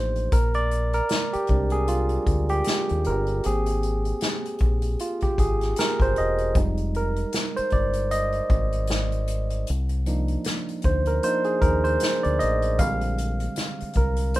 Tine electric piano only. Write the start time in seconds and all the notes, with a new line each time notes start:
Already playing: F3 A#3 D4 D#4 C5
0.33 A#4
0.55 D5
0.94 A#4
1.33 G4
1.49 G3 G#3 C4 D4
1.72 G#4
1.88 F4
2.50 G4
3.07 A#4
3.45 A#3 C4 G4 G#4
5.01 F4
5.23 G4
5.40 G#4
5.79 A#4
6.02 C5
6.18 D#5
6.56 G3 G#3 D#4
6.96 A#4
7.57 C5
7.73 D5
8.11 D#5
10.06 F3 A#3 D4 D#4
10.85 C5
11.07 A#4
11.24 F3 A#3 D4 D#4 C5
11.45 G#4
11.61 A#4
11.84 C5
12.23 D5
12.39 D#5
12.79 D3 G3 G#3 C4 F5
13.97 A#4
14.35 G3 G#3 C4 D4 C5